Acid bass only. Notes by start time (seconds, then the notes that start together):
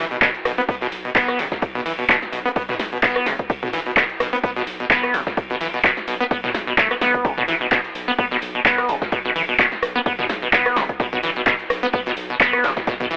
0.11 B2
0.22 B2
0.45 B2
0.58 B3
0.69 B3
0.81 B2
1.05 B2
1.15 B3
1.39 B2
1.75 B2
1.86 E3
1.99 B2
2.09 B2
2.32 B2
2.45 B3
2.56 B3
2.69 B2
2.92 B2
3.03 B3
3.26 B2
3.63 B2
3.73 E3
3.86 B2
3.97 B2
4.20 B2
4.33 B3
4.43 B3
4.56 B2
4.80 B2
4.90 B3
5.14 B2
5.50 B2
5.61 E3
5.74 B2
5.84 B2
6.08 B2
6.21 B3
6.31 B3
6.44 B2
6.67 B2
6.78 A3
6.91 B3
7.01 B3
7.25 B2
7.38 B2
7.48 E3
7.61 B2
7.72 B2
8.08 B3
8.18 B3
8.31 B2
8.55 B2
8.65 B3
8.89 B2
9.12 B2
9.25 B2
9.36 E3
9.49 B2
9.59 B2
9.95 B3
10.06 B3
10.19 B2
10.42 B2
10.53 B3
10.76 B2
11.00 B2
11.13 B2
11.23 E3
11.36 B2
11.47 B2
11.83 B3
11.93 B3
12.06 B2
12.30 B2
12.40 B3
12.64 B2
12.87 B2
13.00 B2
13.11 E3